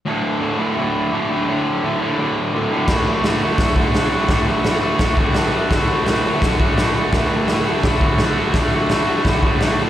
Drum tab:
CC |--------|--------|x-------|--------|
HH |--------|--------|--o-o-o-|o-o-o-o-|
SD |--------|--------|o-o-o-o-|o-o-o-o-|
BD |--------|--------|o---oo--|o---oo--|

CC |--------|--------|--------|
HH |o-o-o-o-|o-o-o-o-|o-o-o-o-|
SD |o-o-o-o-|o-o-o-o-|o-o-o-o-|
BD |o---oo--|o---oo--|o---oo--|